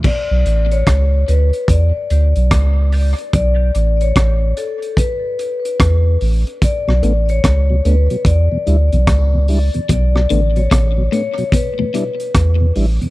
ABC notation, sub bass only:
X:1
M:4/4
L:1/16
Q:"Swing 16ths" 1/4=73
K:Edor
V:1 name="Sub bass" clef=bass
z B,,, A,,,2 C,,2 D,, z E,, z D,, B,,, C,,3 z | B,,,2 A,,,2 A,,,2 z6 E,,2 A,,, z | z B,,, A,,,2 C,,2 D,, z E,, z D,, B,,, C,,3 z | B,,,2 A,,,2 A,,,2 z6 E,,2 A,,, z |]